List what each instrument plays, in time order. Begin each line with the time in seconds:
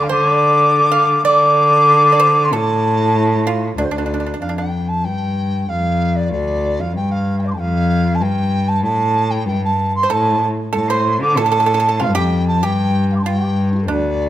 0.03 dizi F5
0.09 cello D3, pipa C5, dizi D6
0.33 pipa D5
0.92 pipa F5
1.25 cello D3, pipa D5, dizi D6
2.12 pipa D5
2.20 pipa C5
2.45 dizi C6
2.52 cello A2, pipa A4, dizi A5
3.47 pipa F4
3.77 cello D2, pipa D4, dizi D5
3.84 dizi C5
3.91 cello D2, pipa D4, dizi D5
3.98 pipa D4
4.06 pipa D4
4.14 pipa D4
4.20 pipa D4
4.27 pipa D4
4.34 pipa D4
4.41 cello F2, pipa D4, dizi F5
4.49 pipa D4
4.57 pipa D4, dizi G5
4.89 dizi A5
5.04 cello G2, dizi G5
5.69 cello F2, dizi F5
6.16 dizi D5
6.32 cello D2, dizi D5
6.80 cello F2, dizi F5
6.96 cello G2, dizi G5
7.11 dizi F5
7.39 dizi F5 G5
7.43 dizi D5 D6
7.49 dizi A5 C6
7.57 cello F2, dizi F5 G5
8.15 dizi A5
8.21 cello G2, dizi G5
8.68 dizi A5
8.83 cello A2, dizi A5
9.31 dizi G5
9.46 cello G2, dizi G5
9.64 dizi A5
9.95 dizi C6
10.03 pipa C5
10.10 cello A2, pipa A4, dizi A5
10.73 cello A2, pipa A4, dizi A5
10.90 pipa C5, dizi C6
11.21 cello D3, dizi D6
11.37 cello A2, pipa A4, dizi A5
11.46 pipa A4
11.52 pipa A4
11.60 pipa A4
11.66 pipa A4
11.74 pipa A4
11.80 pipa A4
11.89 pipa A4
12.00 cello F2, pipa F4, dizi F5
12.15 pipa G4, dizi G5
12.48 dizi A5
12.63 cello G2, pipa G4, dizi G5
13.09 dizi F5 G5
13.16 dizi C6 D6
13.23 cello G2, pipa F4, dizi A5
13.27 dizi G5
13.44 pipa G4
13.72 dizi D4 F4
13.78 dizi G4 A4
13.86 cello D2, pipa D4, dizi C5
13.91 dizi D5